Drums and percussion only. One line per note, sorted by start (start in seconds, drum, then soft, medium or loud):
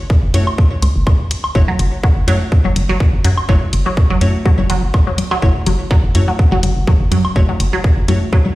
0.10 kick loud
0.34 closed hi-hat medium
0.47 low woodblock medium
0.58 kick loud
0.82 closed hi-hat medium
0.82 low woodblock soft
1.07 kick loud
1.07 low woodblock medium
1.31 closed hi-hat medium
1.44 low woodblock medium
1.55 kick loud
1.79 closed hi-hat medium
2.03 kick loud
2.28 closed hi-hat medium
2.52 kick loud
2.65 low conga medium
2.76 closed hi-hat medium
2.76 low conga medium
3.00 kick loud
3.25 closed hi-hat medium
3.38 low woodblock medium
3.49 kick loud
3.73 closed hi-hat medium
3.97 kick loud
4.21 closed hi-hat medium
4.46 kick loud
4.59 low conga medium
4.70 closed hi-hat medium
4.70 low woodblock soft
4.94 kick loud
4.94 low woodblock medium
5.18 closed hi-hat medium
5.18 low conga medium
5.31 low woodblock medium
5.42 kick loud
5.66 closed hi-hat medium
5.91 kick loud
6.15 closed hi-hat medium
6.39 kick loud
6.52 low conga medium
6.63 closed hi-hat medium
6.63 low conga medium
6.87 kick loud
7.12 closed hi-hat medium
7.25 low woodblock medium
7.36 kick loud
7.60 closed hi-hat medium
7.84 kick loud
8.08 closed hi-hat medium
8.33 kick loud
8.46 low conga medium